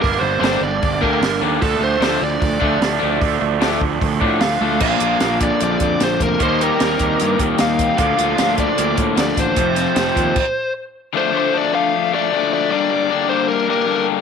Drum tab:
CC |--------|--------|--------|x-------|
HH |o-o-o-o-|o-o-o-o-|o-o-o-o-|-xxxxxxx|
SD |--o---o-|--o---o-|--o---o-|--o---o-|
T1 |--------|--------|-------o|--------|
BD |o---oo--|o---oo--|o--ooo--|o--o-o-o|

CC |--------|--------|----x---|--------|
HH |xxxxxxxx|xxxxxxxx|xxxx----|--------|
SD |--o---o-|--o---o-|-oo-----|--------|
T1 |--------|--------|--------|--------|
BD |o--o-o-o|o--o-o-o|o--oo---|--------|

CC |--------|
HH |--------|
SD |--------|
T1 |--------|
BD |--------|